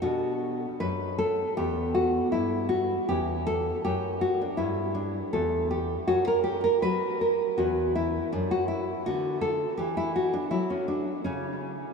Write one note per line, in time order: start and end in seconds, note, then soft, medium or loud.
0.02 0.65 B2 medium
0.02 1.53 D4 medium
0.02 0.77 F#4 loud
0.80 1.42 F#2 medium
0.80 1.17 B4 loud
1.19 1.55 A4 loud
1.57 2.18 E2 medium
1.57 3.05 B3 medium
1.57 1.94 G4 loud
1.95 2.31 F#4 loud
2.32 2.94 G2 medium
2.32 2.68 E4 loud
2.69 3.06 F#4 loud
3.09 3.69 E2 medium
3.09 6.06 C#4 medium
3.09 3.45 G4 loud
3.47 3.83 A4 loud
3.85 4.45 F#2 medium
3.85 4.20 G4 medium
4.21 4.40 F#4 loud
4.41 4.60 D4 medium
4.57 5.18 G2 medium
4.57 4.94 E4 medium
4.95 5.31 D4 medium
5.33 5.95 E2 medium
5.33 5.69 A4 loud
5.71 6.07 G4 medium
6.08 6.68 F#2 medium
6.08 7.53 C#4 medium
6.08 6.27 F#4 loud
6.27 6.43 A#4 loud
6.44 6.63 G4 loud
6.64 6.82 A#4 loud
6.82 7.43 F#3 medium
6.82 7.18 B4 loud
7.21 7.56 A#4 medium
7.58 8.17 E2 medium
7.58 9.02 C#4 medium
7.58 7.93 F#4 loud
7.96 8.30 E4 loud
8.32 8.91 F#2 medium
8.32 8.50 D4 medium
8.51 8.68 F#4 loud
8.68 9.03 E4 medium
9.06 9.65 D3 medium
9.06 11.93 B3 medium
9.06 9.41 F#4 loud
9.41 9.77 A4 loud
9.77 10.37 E3 medium
9.77 9.96 G4 medium
9.97 10.15 E4 loud
10.16 10.33 F#4 loud
10.33 10.52 D4 medium
10.51 11.10 F#3 medium
10.51 10.69 E4 loud
10.70 10.88 C#4 medium
10.88 11.24 D4 medium
11.24 11.84 C#3 medium
11.24 11.60 C#4 medium